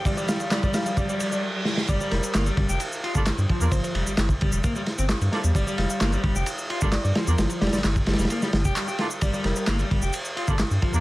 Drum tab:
RD |x-x-x-x-x---x-x-x---x-----------|x---x-x-x-x-x---x---x---x---x---|x-x-x-x-x---x-x-x---x-x-x-x-x---|x---x-x-x-x-x---x---x---x---x---|
SH |x-x-x-x-x-x-x-x-x-x-x-x---------|x-x---x-x-x---x-x-x---x-x-x---x-|x-x---x-x-x---x-x-x---x-x-x---x-|x-x---x-x-x---x-x-x---x-x-x---x-|
CP |--------x-----------------------|--------x---------------x-------|--------x---------------x-------|--------x---------------x-------|
SD |----o---o---o---------------o-o-|----o---o---------------o-------|--------o-----------o---o---o---|----o---o---------------o---o---|
BD |o---------o-----o---------------|o-----------o---------o-----o---|o---------o-o---o---------------|o-----------o---------o---------|

RD |x-x-xxxxx---xxxxx---x---x---x---|x---x-x-x-x-x---x---x---x---x---|
SH |x-x---x-x-x---x-x-x---x-x-x---x-|x-x---x-x-x---x-x-x---x-x-x---x-|
CP |--------x---------------x-------|--------x---------------x-------|
SD |o---ooooo---oooo--o-o-------o---|----o---o---------------o-------|
BD |----------o-----------o---------|o-----------o---------o-----o---|